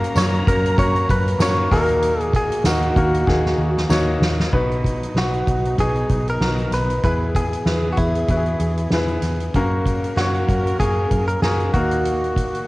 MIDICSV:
0, 0, Header, 1, 6, 480
1, 0, Start_track
1, 0, Key_signature, 5, "major"
1, 0, Tempo, 626305
1, 1556, Time_signature, 4, 2, 24, 8
1, 9713, End_track
2, 0, Start_track
2, 0, Title_t, "Clean electric guitar"
2, 0, Program_c, 0, 27
2, 136, Note_on_c, 0, 73, 96
2, 366, Note_off_c, 0, 73, 0
2, 369, Note_on_c, 0, 70, 90
2, 603, Note_off_c, 0, 70, 0
2, 606, Note_on_c, 0, 73, 98
2, 845, Note_off_c, 0, 73, 0
2, 848, Note_on_c, 0, 71, 94
2, 1086, Note_off_c, 0, 71, 0
2, 1089, Note_on_c, 0, 73, 99
2, 1318, Note_off_c, 0, 73, 0
2, 1321, Note_on_c, 0, 70, 97
2, 1697, Note_off_c, 0, 70, 0
2, 1697, Note_on_c, 0, 68, 97
2, 1808, Note_off_c, 0, 68, 0
2, 1811, Note_on_c, 0, 68, 82
2, 2027, Note_off_c, 0, 68, 0
2, 2042, Note_on_c, 0, 66, 72
2, 3206, Note_off_c, 0, 66, 0
2, 3969, Note_on_c, 0, 66, 73
2, 4410, Note_off_c, 0, 66, 0
2, 4447, Note_on_c, 0, 68, 84
2, 4822, Note_off_c, 0, 68, 0
2, 4825, Note_on_c, 0, 70, 86
2, 5160, Note_off_c, 0, 70, 0
2, 5163, Note_on_c, 0, 71, 83
2, 5389, Note_off_c, 0, 71, 0
2, 5398, Note_on_c, 0, 71, 91
2, 5462, Note_off_c, 0, 71, 0
2, 5641, Note_on_c, 0, 68, 81
2, 6040, Note_off_c, 0, 68, 0
2, 6074, Note_on_c, 0, 66, 51
2, 6114, Note_on_c, 0, 64, 68
2, 6117, Note_off_c, 0, 66, 0
2, 7043, Note_off_c, 0, 64, 0
2, 7798, Note_on_c, 0, 66, 72
2, 8273, Note_off_c, 0, 66, 0
2, 8276, Note_on_c, 0, 68, 89
2, 8624, Note_off_c, 0, 68, 0
2, 8643, Note_on_c, 0, 70, 86
2, 8752, Note_off_c, 0, 70, 0
2, 8755, Note_on_c, 0, 68, 79
2, 8993, Note_off_c, 0, 68, 0
2, 8996, Note_on_c, 0, 66, 79
2, 9713, Note_off_c, 0, 66, 0
2, 9713, End_track
3, 0, Start_track
3, 0, Title_t, "Grand piano"
3, 0, Program_c, 1, 0
3, 0, Control_c, 1, 64, 127
3, 0, Note_on_c, 1, 49, 74
3, 0, Note_on_c, 1, 58, 108
3, 0, Note_on_c, 1, 61, 101
3, 0, Note_on_c, 1, 66, 89
3, 0, Note_on_c, 1, 70, 119
3, 117, Note_off_c, 1, 58, 0
3, 117, Note_off_c, 1, 61, 0
3, 117, Note_on_c, 1, 58, 70
3, 117, Note_on_c, 1, 61, 59
3, 119, Note_off_c, 1, 66, 0
3, 119, Note_on_c, 1, 66, 63
3, 120, Note_off_c, 1, 70, 0
3, 120, Note_on_c, 1, 70, 76
3, 315, Note_off_c, 1, 58, 0
3, 315, Note_off_c, 1, 61, 0
3, 316, Note_off_c, 1, 66, 0
3, 316, Note_off_c, 1, 70, 0
3, 332, Note_off_c, 1, 49, 0
3, 357, Note_on_c, 1, 61, 63
3, 358, Note_on_c, 1, 58, 70
3, 360, Note_on_c, 1, 66, 65
3, 360, Note_on_c, 1, 70, 78
3, 554, Note_off_c, 1, 61, 0
3, 555, Note_off_c, 1, 58, 0
3, 556, Note_off_c, 1, 66, 0
3, 556, Note_off_c, 1, 70, 0
3, 596, Note_on_c, 1, 58, 71
3, 596, Note_on_c, 1, 61, 65
3, 597, Note_on_c, 1, 66, 66
3, 600, Note_on_c, 1, 70, 79
3, 990, Note_off_c, 1, 58, 0
3, 990, Note_off_c, 1, 61, 0
3, 991, Note_off_c, 1, 66, 0
3, 992, Note_off_c, 1, 70, 0
3, 1071, Note_on_c, 1, 58, 72
3, 1071, Note_on_c, 1, 61, 67
3, 1074, Note_on_c, 1, 70, 79
3, 1075, Note_on_c, 1, 66, 67
3, 1303, Note_off_c, 1, 58, 0
3, 1303, Note_off_c, 1, 70, 0
3, 1305, Note_off_c, 1, 66, 0
3, 1313, Note_on_c, 1, 46, 71
3, 1314, Note_off_c, 1, 61, 0
3, 1314, Note_on_c, 1, 58, 84
3, 1315, Note_on_c, 1, 63, 74
3, 1315, Note_on_c, 1, 70, 93
3, 1317, Note_on_c, 1, 66, 75
3, 1327, Control_c, 1, 64, 0
3, 1469, Control_c, 1, 64, 127
3, 1902, Note_off_c, 1, 58, 0
3, 1902, Note_off_c, 1, 63, 0
3, 1902, Note_off_c, 1, 70, 0
3, 1903, Note_off_c, 1, 66, 0
3, 2003, Note_off_c, 1, 46, 0
3, 2035, Note_on_c, 1, 63, 65
3, 2035, Note_on_c, 1, 66, 59
3, 2037, Note_on_c, 1, 58, 63
3, 2038, Note_on_c, 1, 70, 74
3, 2232, Note_off_c, 1, 58, 0
3, 2232, Note_off_c, 1, 63, 0
3, 2232, Note_off_c, 1, 66, 0
3, 2233, Note_off_c, 1, 70, 0
3, 2271, Note_on_c, 1, 58, 67
3, 2272, Note_on_c, 1, 66, 65
3, 2274, Note_on_c, 1, 63, 64
3, 2274, Note_on_c, 1, 70, 77
3, 2469, Note_off_c, 1, 58, 0
3, 2470, Note_off_c, 1, 66, 0
3, 2471, Note_off_c, 1, 63, 0
3, 2471, Note_off_c, 1, 70, 0
3, 2506, Note_on_c, 1, 66, 60
3, 2509, Note_on_c, 1, 63, 62
3, 2509, Note_on_c, 1, 68, 77
3, 2510, Note_on_c, 1, 58, 68
3, 2904, Note_off_c, 1, 66, 0
3, 2905, Note_off_c, 1, 58, 0
3, 2905, Note_off_c, 1, 63, 0
3, 2905, Note_off_c, 1, 68, 0
3, 2984, Note_on_c, 1, 63, 74
3, 2987, Note_on_c, 1, 58, 78
3, 2987, Note_on_c, 1, 66, 78
3, 2988, Note_on_c, 1, 73, 89
3, 3382, Note_off_c, 1, 63, 0
3, 3383, Note_off_c, 1, 58, 0
3, 3384, Note_off_c, 1, 66, 0
3, 3384, Note_off_c, 1, 73, 0
3, 3470, Note_on_c, 1, 59, 92
3, 3472, Note_on_c, 1, 63, 74
3, 3472, Note_on_c, 1, 66, 77
3, 3474, Note_on_c, 1, 71, 97
3, 3482, Control_c, 1, 64, 0
3, 3628, Control_c, 1, 64, 127
3, 3865, Note_off_c, 1, 59, 0
3, 3866, Note_off_c, 1, 63, 0
3, 3866, Note_off_c, 1, 66, 0
3, 3867, Note_off_c, 1, 71, 0
3, 3957, Note_on_c, 1, 63, 52
3, 3958, Note_on_c, 1, 66, 53
3, 3958, Note_on_c, 1, 71, 60
3, 3959, Note_on_c, 1, 59, 56
3, 4348, Note_off_c, 1, 63, 0
3, 4349, Note_off_c, 1, 59, 0
3, 4349, Note_off_c, 1, 66, 0
3, 4349, Note_off_c, 1, 71, 0
3, 4435, Note_on_c, 1, 59, 63
3, 4436, Note_on_c, 1, 63, 58
3, 4436, Note_on_c, 1, 68, 67
3, 4437, Note_on_c, 1, 66, 56
3, 4828, Note_off_c, 1, 59, 0
3, 4828, Note_off_c, 1, 63, 0
3, 4828, Note_off_c, 1, 66, 0
3, 4828, Note_off_c, 1, 68, 0
3, 4915, Note_on_c, 1, 59, 58
3, 4915, Note_on_c, 1, 66, 54
3, 4916, Note_on_c, 1, 63, 54
3, 4916, Note_on_c, 1, 70, 65
3, 5308, Note_off_c, 1, 59, 0
3, 5308, Note_off_c, 1, 63, 0
3, 5308, Note_off_c, 1, 66, 0
3, 5308, Note_off_c, 1, 70, 0
3, 5399, Note_on_c, 1, 59, 74
3, 5400, Note_on_c, 1, 64, 68
3, 5401, Note_on_c, 1, 47, 52
3, 5401, Note_on_c, 1, 71, 77
3, 5402, Control_c, 1, 64, 0
3, 5402, Note_on_c, 1, 68, 68
3, 5546, Control_c, 1, 64, 127
3, 5790, Note_off_c, 1, 59, 0
3, 5790, Note_off_c, 1, 64, 0
3, 5791, Note_off_c, 1, 68, 0
3, 5791, Note_off_c, 1, 71, 0
3, 5869, Note_on_c, 1, 64, 54
3, 5870, Note_on_c, 1, 59, 61
3, 5874, Note_on_c, 1, 71, 67
3, 5875, Note_on_c, 1, 68, 53
3, 6086, Note_off_c, 1, 47, 0
3, 6265, Note_off_c, 1, 59, 0
3, 6265, Note_off_c, 1, 64, 0
3, 6268, Note_off_c, 1, 68, 0
3, 6268, Note_off_c, 1, 71, 0
3, 6360, Note_on_c, 1, 59, 61
3, 6361, Note_on_c, 1, 66, 44
3, 6362, Note_on_c, 1, 64, 57
3, 6362, Note_on_c, 1, 71, 66
3, 6409, Note_on_c, 1, 68, 58
3, 6413, Note_off_c, 1, 66, 0
3, 6750, Note_off_c, 1, 59, 0
3, 6752, Note_off_c, 1, 64, 0
3, 6752, Note_off_c, 1, 71, 0
3, 6775, Note_off_c, 1, 68, 0
3, 6843, Note_on_c, 1, 59, 70
3, 6843, Note_on_c, 1, 64, 66
3, 6846, Note_on_c, 1, 68, 68
3, 6846, Note_on_c, 1, 71, 80
3, 7232, Note_off_c, 1, 59, 0
3, 7232, Note_off_c, 1, 64, 0
3, 7234, Note_off_c, 1, 68, 0
3, 7234, Note_off_c, 1, 71, 0
3, 7321, Note_on_c, 1, 49, 63
3, 7322, Note_on_c, 1, 66, 87
3, 7323, Control_c, 1, 64, 0
3, 7323, Note_on_c, 1, 58, 92
3, 7324, Note_on_c, 1, 61, 85
3, 7325, Note_on_c, 1, 70, 101
3, 7477, Control_c, 1, 64, 127
3, 7712, Note_off_c, 1, 66, 0
3, 7713, Note_off_c, 1, 58, 0
3, 7713, Note_off_c, 1, 61, 0
3, 7714, Note_off_c, 1, 70, 0
3, 7805, Note_on_c, 1, 58, 61
3, 7805, Note_on_c, 1, 61, 57
3, 7806, Note_on_c, 1, 66, 58
3, 7807, Note_on_c, 1, 73, 66
3, 8007, Note_off_c, 1, 49, 0
3, 8194, Note_off_c, 1, 58, 0
3, 8194, Note_off_c, 1, 61, 0
3, 8194, Note_off_c, 1, 66, 0
3, 8195, Note_off_c, 1, 73, 0
3, 8278, Note_on_c, 1, 58, 62
3, 8281, Note_on_c, 1, 61, 55
3, 8281, Note_on_c, 1, 66, 56
3, 8282, Note_on_c, 1, 68, 69
3, 8671, Note_off_c, 1, 58, 0
3, 8672, Note_off_c, 1, 61, 0
3, 8672, Note_off_c, 1, 66, 0
3, 8673, Note_off_c, 1, 68, 0
3, 8762, Note_on_c, 1, 58, 64
3, 8764, Note_on_c, 1, 61, 58
3, 8766, Note_on_c, 1, 66, 58
3, 8767, Note_on_c, 1, 70, 69
3, 8992, Note_off_c, 1, 58, 0
3, 8994, Note_off_c, 1, 66, 0
3, 8994, Note_off_c, 1, 70, 0
3, 9000, Note_off_c, 1, 61, 0
3, 9003, Note_on_c, 1, 58, 70
3, 9004, Control_c, 1, 64, 0
3, 9005, Note_on_c, 1, 66, 63
3, 9006, Note_on_c, 1, 70, 80
3, 9007, Note_on_c, 1, 46, 60
3, 9007, Note_on_c, 1, 63, 68
3, 9139, Control_c, 1, 64, 127
3, 9587, Note_off_c, 1, 58, 0
3, 9588, Note_off_c, 1, 66, 0
3, 9588, Note_off_c, 1, 70, 0
3, 9589, Note_off_c, 1, 63, 0
3, 9691, Note_off_c, 1, 46, 0
3, 9713, End_track
4, 0, Start_track
4, 0, Title_t, "String section"
4, 0, Program_c, 2, 48
4, 0, Note_on_c, 2, 54, 83
4, 0, Note_on_c, 2, 61, 73
4, 0, Note_on_c, 2, 82, 85
4, 1300, Note_off_c, 2, 61, 0
4, 1302, Note_off_c, 2, 82, 0
4, 1303, Note_off_c, 2, 54, 0
4, 1315, Note_on_c, 2, 58, 72
4, 1318, Note_on_c, 2, 51, 78
4, 1319, Note_on_c, 2, 66, 89
4, 3451, Note_off_c, 2, 58, 0
4, 3452, Note_off_c, 2, 51, 0
4, 3453, Note_off_c, 2, 66, 0
4, 3466, Note_on_c, 2, 63, 71
4, 3467, Note_on_c, 2, 59, 59
4, 3470, Note_on_c, 2, 54, 65
4, 5370, Note_off_c, 2, 63, 0
4, 5372, Note_off_c, 2, 54, 0
4, 5385, Note_on_c, 2, 52, 72
4, 5387, Note_on_c, 2, 68, 79
4, 7280, Note_off_c, 2, 59, 0
4, 7291, Note_off_c, 2, 52, 0
4, 7291, Note_off_c, 2, 68, 0
4, 7315, Note_on_c, 2, 54, 69
4, 7319, Note_on_c, 2, 70, 77
4, 7323, Note_on_c, 2, 61, 62
4, 8979, Note_off_c, 2, 54, 0
4, 8981, Note_off_c, 2, 70, 0
4, 8983, Note_off_c, 2, 61, 0
4, 8997, Note_on_c, 2, 51, 70
4, 8999, Note_on_c, 2, 58, 66
4, 8999, Note_on_c, 2, 66, 81
4, 9713, Note_off_c, 2, 51, 0
4, 9713, Note_off_c, 2, 58, 0
4, 9713, Note_off_c, 2, 66, 0
4, 9713, End_track
5, 0, Start_track
5, 0, Title_t, "Picked electric bass"
5, 0, Program_c, 3, 34
5, 119, Note_on_c, 3, 42, 101
5, 315, Note_off_c, 3, 42, 0
5, 364, Note_on_c, 3, 42, 103
5, 558, Note_off_c, 3, 42, 0
5, 599, Note_on_c, 3, 42, 106
5, 795, Note_off_c, 3, 42, 0
5, 837, Note_on_c, 3, 42, 84
5, 1034, Note_off_c, 3, 42, 0
5, 1065, Note_on_c, 3, 42, 103
5, 1266, Note_off_c, 3, 42, 0
5, 1313, Note_on_c, 3, 39, 88
5, 1903, Note_off_c, 3, 39, 0
5, 2027, Note_on_c, 3, 39, 94
5, 2227, Note_off_c, 3, 39, 0
5, 2272, Note_on_c, 3, 39, 107
5, 2469, Note_off_c, 3, 39, 0
5, 2509, Note_on_c, 3, 39, 99
5, 2707, Note_off_c, 3, 39, 0
5, 2745, Note_on_c, 3, 39, 87
5, 2945, Note_off_c, 3, 39, 0
5, 2986, Note_on_c, 3, 39, 104
5, 3186, Note_off_c, 3, 39, 0
5, 3223, Note_on_c, 3, 39, 101
5, 3424, Note_off_c, 3, 39, 0
5, 3471, Note_on_c, 3, 35, 89
5, 3865, Note_off_c, 3, 35, 0
5, 3944, Note_on_c, 3, 35, 86
5, 4144, Note_off_c, 3, 35, 0
5, 4193, Note_on_c, 3, 35, 89
5, 4389, Note_off_c, 3, 35, 0
5, 4429, Note_on_c, 3, 35, 84
5, 4627, Note_off_c, 3, 35, 0
5, 4673, Note_on_c, 3, 35, 73
5, 4869, Note_off_c, 3, 35, 0
5, 4909, Note_on_c, 3, 35, 88
5, 5108, Note_off_c, 3, 35, 0
5, 5146, Note_on_c, 3, 35, 89
5, 5346, Note_off_c, 3, 35, 0
5, 5392, Note_on_c, 3, 40, 84
5, 5786, Note_off_c, 3, 40, 0
5, 5869, Note_on_c, 3, 40, 80
5, 6067, Note_off_c, 3, 40, 0
5, 6112, Note_on_c, 3, 40, 79
5, 6309, Note_off_c, 3, 40, 0
5, 6350, Note_on_c, 3, 40, 80
5, 6548, Note_off_c, 3, 40, 0
5, 6588, Note_on_c, 3, 40, 72
5, 6787, Note_off_c, 3, 40, 0
5, 6829, Note_on_c, 3, 40, 83
5, 7028, Note_off_c, 3, 40, 0
5, 7067, Note_on_c, 3, 40, 84
5, 7266, Note_off_c, 3, 40, 0
5, 7312, Note_on_c, 3, 42, 87
5, 7707, Note_off_c, 3, 42, 0
5, 7791, Note_on_c, 3, 42, 89
5, 7989, Note_off_c, 3, 42, 0
5, 8036, Note_on_c, 3, 42, 91
5, 8232, Note_off_c, 3, 42, 0
5, 8273, Note_on_c, 3, 42, 93
5, 8471, Note_off_c, 3, 42, 0
5, 8515, Note_on_c, 3, 42, 78
5, 8712, Note_off_c, 3, 42, 0
5, 8754, Note_on_c, 3, 42, 93
5, 8951, Note_off_c, 3, 42, 0
5, 8996, Note_on_c, 3, 39, 77
5, 9587, Note_off_c, 3, 39, 0
5, 9713, End_track
6, 0, Start_track
6, 0, Title_t, "Drums"
6, 30, Note_on_c, 9, 42, 57
6, 107, Note_off_c, 9, 42, 0
6, 119, Note_on_c, 9, 54, 78
6, 128, Note_on_c, 9, 38, 94
6, 134, Note_on_c, 9, 42, 85
6, 196, Note_off_c, 9, 54, 0
6, 204, Note_off_c, 9, 38, 0
6, 211, Note_off_c, 9, 42, 0
6, 262, Note_on_c, 9, 42, 34
6, 338, Note_off_c, 9, 42, 0
6, 363, Note_on_c, 9, 36, 107
6, 369, Note_on_c, 9, 42, 68
6, 439, Note_off_c, 9, 36, 0
6, 445, Note_off_c, 9, 42, 0
6, 503, Note_on_c, 9, 42, 50
6, 580, Note_off_c, 9, 42, 0
6, 599, Note_on_c, 9, 36, 95
6, 603, Note_on_c, 9, 42, 83
6, 675, Note_off_c, 9, 36, 0
6, 680, Note_off_c, 9, 42, 0
6, 734, Note_on_c, 9, 42, 35
6, 811, Note_off_c, 9, 42, 0
6, 839, Note_on_c, 9, 36, 93
6, 842, Note_on_c, 9, 42, 69
6, 915, Note_off_c, 9, 36, 0
6, 919, Note_off_c, 9, 42, 0
6, 979, Note_on_c, 9, 42, 49
6, 1055, Note_off_c, 9, 42, 0
6, 1073, Note_on_c, 9, 38, 106
6, 1076, Note_on_c, 9, 54, 86
6, 1078, Note_on_c, 9, 42, 89
6, 1149, Note_off_c, 9, 38, 0
6, 1153, Note_off_c, 9, 54, 0
6, 1154, Note_off_c, 9, 42, 0
6, 1314, Note_on_c, 9, 36, 109
6, 1315, Note_on_c, 9, 46, 80
6, 1318, Note_on_c, 9, 38, 35
6, 1391, Note_off_c, 9, 36, 0
6, 1391, Note_off_c, 9, 46, 0
6, 1395, Note_off_c, 9, 38, 0
6, 1448, Note_on_c, 9, 42, 53
6, 1525, Note_off_c, 9, 42, 0
6, 1552, Note_on_c, 9, 42, 87
6, 1629, Note_off_c, 9, 42, 0
6, 1690, Note_on_c, 9, 42, 37
6, 1767, Note_off_c, 9, 42, 0
6, 1790, Note_on_c, 9, 36, 82
6, 1797, Note_on_c, 9, 42, 73
6, 1867, Note_off_c, 9, 36, 0
6, 1874, Note_off_c, 9, 42, 0
6, 1930, Note_on_c, 9, 42, 56
6, 2007, Note_off_c, 9, 42, 0
6, 2025, Note_on_c, 9, 38, 93
6, 2031, Note_on_c, 9, 42, 85
6, 2032, Note_on_c, 9, 54, 80
6, 2102, Note_off_c, 9, 38, 0
6, 2108, Note_off_c, 9, 42, 0
6, 2108, Note_off_c, 9, 54, 0
6, 2165, Note_on_c, 9, 42, 33
6, 2241, Note_off_c, 9, 42, 0
6, 2272, Note_on_c, 9, 36, 102
6, 2274, Note_on_c, 9, 42, 71
6, 2348, Note_off_c, 9, 36, 0
6, 2350, Note_off_c, 9, 42, 0
6, 2411, Note_on_c, 9, 42, 51
6, 2488, Note_off_c, 9, 42, 0
6, 2510, Note_on_c, 9, 36, 91
6, 2515, Note_on_c, 9, 38, 59
6, 2587, Note_off_c, 9, 36, 0
6, 2592, Note_off_c, 9, 38, 0
6, 2649, Note_on_c, 9, 38, 53
6, 2726, Note_off_c, 9, 38, 0
6, 2889, Note_on_c, 9, 38, 59
6, 2966, Note_off_c, 9, 38, 0
6, 2990, Note_on_c, 9, 54, 88
6, 2995, Note_on_c, 9, 38, 87
6, 3066, Note_off_c, 9, 54, 0
6, 3072, Note_off_c, 9, 38, 0
6, 3233, Note_on_c, 9, 38, 103
6, 3309, Note_off_c, 9, 38, 0
6, 3370, Note_on_c, 9, 38, 86
6, 3446, Note_off_c, 9, 38, 0
6, 3472, Note_on_c, 9, 36, 93
6, 3474, Note_on_c, 9, 49, 73
6, 3549, Note_off_c, 9, 36, 0
6, 3551, Note_off_c, 9, 49, 0
6, 3613, Note_on_c, 9, 42, 31
6, 3690, Note_off_c, 9, 42, 0
6, 3712, Note_on_c, 9, 36, 69
6, 3724, Note_on_c, 9, 42, 60
6, 3789, Note_off_c, 9, 36, 0
6, 3801, Note_off_c, 9, 42, 0
6, 3855, Note_on_c, 9, 42, 48
6, 3932, Note_off_c, 9, 42, 0
6, 3953, Note_on_c, 9, 38, 76
6, 4030, Note_off_c, 9, 38, 0
6, 4088, Note_on_c, 9, 42, 28
6, 4165, Note_off_c, 9, 42, 0
6, 4194, Note_on_c, 9, 36, 91
6, 4195, Note_on_c, 9, 42, 61
6, 4270, Note_off_c, 9, 36, 0
6, 4272, Note_off_c, 9, 42, 0
6, 4332, Note_on_c, 9, 42, 44
6, 4408, Note_off_c, 9, 42, 0
6, 4432, Note_on_c, 9, 36, 80
6, 4433, Note_on_c, 9, 42, 72
6, 4508, Note_off_c, 9, 36, 0
6, 4509, Note_off_c, 9, 42, 0
6, 4564, Note_on_c, 9, 42, 30
6, 4641, Note_off_c, 9, 42, 0
6, 4670, Note_on_c, 9, 42, 66
6, 4672, Note_on_c, 9, 36, 78
6, 4746, Note_off_c, 9, 42, 0
6, 4749, Note_off_c, 9, 36, 0
6, 4809, Note_on_c, 9, 42, 44
6, 4886, Note_off_c, 9, 42, 0
6, 4910, Note_on_c, 9, 38, 90
6, 4986, Note_off_c, 9, 38, 0
6, 5047, Note_on_c, 9, 42, 28
6, 5123, Note_off_c, 9, 42, 0
6, 5151, Note_on_c, 9, 42, 67
6, 5154, Note_on_c, 9, 38, 31
6, 5227, Note_off_c, 9, 42, 0
6, 5231, Note_off_c, 9, 38, 0
6, 5288, Note_on_c, 9, 42, 45
6, 5364, Note_off_c, 9, 42, 0
6, 5391, Note_on_c, 9, 42, 72
6, 5393, Note_on_c, 9, 36, 102
6, 5467, Note_off_c, 9, 42, 0
6, 5470, Note_off_c, 9, 36, 0
6, 5631, Note_on_c, 9, 36, 71
6, 5637, Note_on_c, 9, 42, 65
6, 5708, Note_off_c, 9, 36, 0
6, 5713, Note_off_c, 9, 42, 0
6, 5770, Note_on_c, 9, 42, 49
6, 5846, Note_off_c, 9, 42, 0
6, 5867, Note_on_c, 9, 38, 80
6, 5944, Note_off_c, 9, 38, 0
6, 6108, Note_on_c, 9, 42, 61
6, 6112, Note_on_c, 9, 36, 91
6, 6185, Note_off_c, 9, 42, 0
6, 6189, Note_off_c, 9, 36, 0
6, 6248, Note_on_c, 9, 42, 45
6, 6324, Note_off_c, 9, 42, 0
6, 6348, Note_on_c, 9, 42, 76
6, 6350, Note_on_c, 9, 36, 81
6, 6425, Note_off_c, 9, 42, 0
6, 6427, Note_off_c, 9, 36, 0
6, 6482, Note_on_c, 9, 42, 30
6, 6559, Note_off_c, 9, 42, 0
6, 6588, Note_on_c, 9, 42, 67
6, 6664, Note_off_c, 9, 42, 0
6, 6725, Note_on_c, 9, 42, 45
6, 6801, Note_off_c, 9, 42, 0
6, 6824, Note_on_c, 9, 38, 98
6, 6900, Note_off_c, 9, 38, 0
6, 6960, Note_on_c, 9, 42, 27
6, 7036, Note_off_c, 9, 42, 0
6, 7065, Note_on_c, 9, 42, 67
6, 7069, Note_on_c, 9, 38, 31
6, 7142, Note_off_c, 9, 42, 0
6, 7146, Note_off_c, 9, 38, 0
6, 7206, Note_on_c, 9, 42, 47
6, 7282, Note_off_c, 9, 42, 0
6, 7312, Note_on_c, 9, 42, 81
6, 7314, Note_on_c, 9, 36, 91
6, 7389, Note_off_c, 9, 42, 0
6, 7390, Note_off_c, 9, 36, 0
6, 7553, Note_on_c, 9, 36, 71
6, 7558, Note_on_c, 9, 42, 60
6, 7630, Note_off_c, 9, 36, 0
6, 7635, Note_off_c, 9, 42, 0
6, 7693, Note_on_c, 9, 42, 48
6, 7769, Note_off_c, 9, 42, 0
6, 7790, Note_on_c, 9, 38, 80
6, 7867, Note_off_c, 9, 38, 0
6, 7928, Note_on_c, 9, 42, 28
6, 8004, Note_off_c, 9, 42, 0
6, 8036, Note_on_c, 9, 36, 91
6, 8038, Note_on_c, 9, 42, 56
6, 8113, Note_off_c, 9, 36, 0
6, 8115, Note_off_c, 9, 42, 0
6, 8176, Note_on_c, 9, 42, 44
6, 8253, Note_off_c, 9, 42, 0
6, 8275, Note_on_c, 9, 36, 86
6, 8280, Note_on_c, 9, 42, 76
6, 8352, Note_off_c, 9, 36, 0
6, 8356, Note_off_c, 9, 42, 0
6, 8513, Note_on_c, 9, 42, 64
6, 8515, Note_on_c, 9, 36, 83
6, 8590, Note_off_c, 9, 42, 0
6, 8591, Note_off_c, 9, 36, 0
6, 8650, Note_on_c, 9, 42, 46
6, 8727, Note_off_c, 9, 42, 0
6, 8753, Note_on_c, 9, 38, 94
6, 8829, Note_off_c, 9, 38, 0
6, 8890, Note_on_c, 9, 42, 29
6, 8966, Note_off_c, 9, 42, 0
6, 8996, Note_on_c, 9, 36, 97
6, 8996, Note_on_c, 9, 42, 69
6, 9072, Note_off_c, 9, 36, 0
6, 9072, Note_off_c, 9, 42, 0
6, 9128, Note_on_c, 9, 42, 50
6, 9205, Note_off_c, 9, 42, 0
6, 9236, Note_on_c, 9, 42, 79
6, 9313, Note_off_c, 9, 42, 0
6, 9379, Note_on_c, 9, 42, 32
6, 9456, Note_off_c, 9, 42, 0
6, 9475, Note_on_c, 9, 36, 67
6, 9482, Note_on_c, 9, 42, 66
6, 9552, Note_off_c, 9, 36, 0
6, 9559, Note_off_c, 9, 42, 0
6, 9615, Note_on_c, 9, 42, 48
6, 9692, Note_off_c, 9, 42, 0
6, 9713, End_track
0, 0, End_of_file